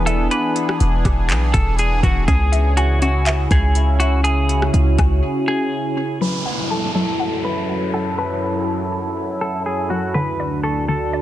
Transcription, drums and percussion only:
0, 0, Header, 1, 2, 480
1, 0, Start_track
1, 0, Key_signature, 3, "minor"
1, 0, Tempo, 491803
1, 305, Time_signature, 4, 2, 24, 8
1, 10948, End_track
2, 0, Start_track
2, 0, Title_t, "Drums"
2, 66, Note_on_c, 9, 42, 78
2, 164, Note_off_c, 9, 42, 0
2, 305, Note_on_c, 9, 42, 67
2, 403, Note_off_c, 9, 42, 0
2, 545, Note_on_c, 9, 42, 61
2, 643, Note_off_c, 9, 42, 0
2, 672, Note_on_c, 9, 37, 101
2, 770, Note_off_c, 9, 37, 0
2, 785, Note_on_c, 9, 42, 68
2, 882, Note_off_c, 9, 42, 0
2, 1026, Note_on_c, 9, 36, 95
2, 1026, Note_on_c, 9, 42, 73
2, 1032, Note_on_c, 9, 37, 92
2, 1123, Note_off_c, 9, 36, 0
2, 1123, Note_off_c, 9, 42, 0
2, 1130, Note_off_c, 9, 37, 0
2, 1263, Note_on_c, 9, 42, 84
2, 1272, Note_on_c, 9, 39, 126
2, 1361, Note_off_c, 9, 42, 0
2, 1369, Note_off_c, 9, 39, 0
2, 1502, Note_on_c, 9, 42, 86
2, 1504, Note_on_c, 9, 36, 98
2, 1600, Note_off_c, 9, 42, 0
2, 1601, Note_off_c, 9, 36, 0
2, 1743, Note_on_c, 9, 42, 79
2, 1841, Note_off_c, 9, 42, 0
2, 1983, Note_on_c, 9, 36, 109
2, 1986, Note_on_c, 9, 42, 79
2, 2080, Note_off_c, 9, 36, 0
2, 2084, Note_off_c, 9, 42, 0
2, 2225, Note_on_c, 9, 36, 125
2, 2225, Note_on_c, 9, 42, 69
2, 2322, Note_off_c, 9, 42, 0
2, 2323, Note_off_c, 9, 36, 0
2, 2467, Note_on_c, 9, 42, 65
2, 2564, Note_off_c, 9, 42, 0
2, 2706, Note_on_c, 9, 42, 69
2, 2803, Note_off_c, 9, 42, 0
2, 2947, Note_on_c, 9, 42, 71
2, 3044, Note_off_c, 9, 42, 0
2, 3183, Note_on_c, 9, 42, 83
2, 3192, Note_on_c, 9, 39, 125
2, 3280, Note_off_c, 9, 42, 0
2, 3289, Note_off_c, 9, 39, 0
2, 3424, Note_on_c, 9, 36, 103
2, 3424, Note_on_c, 9, 42, 85
2, 3521, Note_off_c, 9, 36, 0
2, 3521, Note_off_c, 9, 42, 0
2, 3662, Note_on_c, 9, 42, 78
2, 3760, Note_off_c, 9, 42, 0
2, 3906, Note_on_c, 9, 42, 81
2, 4003, Note_off_c, 9, 42, 0
2, 4143, Note_on_c, 9, 42, 66
2, 4241, Note_off_c, 9, 42, 0
2, 4385, Note_on_c, 9, 42, 63
2, 4483, Note_off_c, 9, 42, 0
2, 4512, Note_on_c, 9, 37, 103
2, 4609, Note_off_c, 9, 37, 0
2, 4625, Note_on_c, 9, 42, 69
2, 4723, Note_off_c, 9, 42, 0
2, 4865, Note_on_c, 9, 42, 74
2, 4866, Note_on_c, 9, 36, 96
2, 4872, Note_on_c, 9, 37, 91
2, 4963, Note_off_c, 9, 42, 0
2, 4964, Note_off_c, 9, 36, 0
2, 4969, Note_off_c, 9, 37, 0
2, 10948, End_track
0, 0, End_of_file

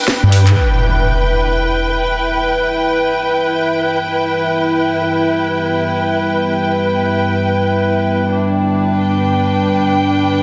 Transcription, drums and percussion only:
0, 0, Header, 1, 2, 480
1, 0, Start_track
1, 0, Tempo, 500000
1, 10011, End_track
2, 0, Start_track
2, 0, Title_t, "Drums"
2, 30, Note_on_c, 9, 38, 84
2, 33, Note_on_c, 9, 54, 75
2, 74, Note_off_c, 9, 38, 0
2, 74, Note_on_c, 9, 38, 110
2, 75, Note_off_c, 9, 38, 0
2, 75, Note_on_c, 9, 38, 127
2, 77, Note_on_c, 9, 39, 112
2, 77, Note_on_c, 9, 42, 76
2, 82, Note_off_c, 9, 54, 0
2, 82, Note_on_c, 9, 54, 95
2, 171, Note_off_c, 9, 38, 0
2, 173, Note_off_c, 9, 39, 0
2, 173, Note_off_c, 9, 42, 0
2, 178, Note_off_c, 9, 54, 0
2, 309, Note_on_c, 9, 46, 94
2, 315, Note_on_c, 9, 54, 72
2, 405, Note_off_c, 9, 46, 0
2, 411, Note_off_c, 9, 54, 0
2, 451, Note_on_c, 9, 39, 82
2, 451, Note_on_c, 9, 42, 55
2, 452, Note_on_c, 9, 38, 57
2, 547, Note_off_c, 9, 39, 0
2, 547, Note_off_c, 9, 42, 0
2, 548, Note_off_c, 9, 38, 0
2, 10011, End_track
0, 0, End_of_file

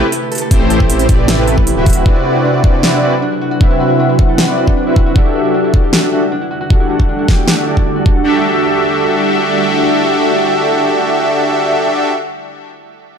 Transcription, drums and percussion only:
0, 0, Header, 1, 2, 480
1, 0, Start_track
1, 0, Key_signature, 1, "minor"
1, 0, Tempo, 387097
1, 632, Time_signature, 4, 2, 24, 8
1, 16343, End_track
2, 0, Start_track
2, 0, Title_t, "Drums"
2, 152, Note_on_c, 9, 42, 75
2, 276, Note_off_c, 9, 42, 0
2, 393, Note_on_c, 9, 42, 46
2, 434, Note_off_c, 9, 42, 0
2, 434, Note_on_c, 9, 42, 61
2, 471, Note_off_c, 9, 42, 0
2, 471, Note_on_c, 9, 42, 75
2, 595, Note_off_c, 9, 42, 0
2, 633, Note_on_c, 9, 36, 117
2, 633, Note_on_c, 9, 42, 75
2, 757, Note_off_c, 9, 36, 0
2, 757, Note_off_c, 9, 42, 0
2, 872, Note_on_c, 9, 42, 61
2, 995, Note_on_c, 9, 36, 60
2, 996, Note_off_c, 9, 42, 0
2, 1111, Note_on_c, 9, 42, 71
2, 1119, Note_off_c, 9, 36, 0
2, 1232, Note_off_c, 9, 42, 0
2, 1232, Note_on_c, 9, 42, 56
2, 1350, Note_off_c, 9, 42, 0
2, 1350, Note_on_c, 9, 42, 59
2, 1353, Note_on_c, 9, 36, 101
2, 1474, Note_off_c, 9, 42, 0
2, 1477, Note_off_c, 9, 36, 0
2, 1589, Note_on_c, 9, 38, 114
2, 1589, Note_on_c, 9, 42, 70
2, 1713, Note_off_c, 9, 38, 0
2, 1713, Note_off_c, 9, 42, 0
2, 1829, Note_on_c, 9, 42, 59
2, 1953, Note_off_c, 9, 42, 0
2, 1955, Note_on_c, 9, 36, 58
2, 2069, Note_on_c, 9, 42, 70
2, 2079, Note_off_c, 9, 36, 0
2, 2193, Note_off_c, 9, 42, 0
2, 2309, Note_on_c, 9, 42, 44
2, 2312, Note_on_c, 9, 36, 101
2, 2351, Note_off_c, 9, 42, 0
2, 2351, Note_on_c, 9, 42, 59
2, 2391, Note_off_c, 9, 42, 0
2, 2391, Note_on_c, 9, 42, 72
2, 2436, Note_off_c, 9, 36, 0
2, 2515, Note_off_c, 9, 42, 0
2, 2552, Note_on_c, 9, 36, 107
2, 2676, Note_off_c, 9, 36, 0
2, 3273, Note_on_c, 9, 36, 96
2, 3397, Note_off_c, 9, 36, 0
2, 3511, Note_on_c, 9, 38, 105
2, 3635, Note_off_c, 9, 38, 0
2, 4474, Note_on_c, 9, 36, 105
2, 4598, Note_off_c, 9, 36, 0
2, 5194, Note_on_c, 9, 36, 94
2, 5318, Note_off_c, 9, 36, 0
2, 5434, Note_on_c, 9, 38, 105
2, 5558, Note_off_c, 9, 38, 0
2, 5797, Note_on_c, 9, 36, 54
2, 5921, Note_off_c, 9, 36, 0
2, 6155, Note_on_c, 9, 36, 91
2, 6279, Note_off_c, 9, 36, 0
2, 6395, Note_on_c, 9, 36, 103
2, 6519, Note_off_c, 9, 36, 0
2, 7114, Note_on_c, 9, 36, 91
2, 7238, Note_off_c, 9, 36, 0
2, 7351, Note_on_c, 9, 38, 105
2, 7475, Note_off_c, 9, 38, 0
2, 8313, Note_on_c, 9, 36, 103
2, 8437, Note_off_c, 9, 36, 0
2, 8676, Note_on_c, 9, 36, 53
2, 8800, Note_off_c, 9, 36, 0
2, 9032, Note_on_c, 9, 38, 52
2, 9033, Note_on_c, 9, 36, 92
2, 9156, Note_off_c, 9, 38, 0
2, 9157, Note_off_c, 9, 36, 0
2, 9270, Note_on_c, 9, 38, 102
2, 9394, Note_off_c, 9, 38, 0
2, 9635, Note_on_c, 9, 36, 53
2, 9759, Note_off_c, 9, 36, 0
2, 9993, Note_on_c, 9, 36, 91
2, 10117, Note_off_c, 9, 36, 0
2, 16343, End_track
0, 0, End_of_file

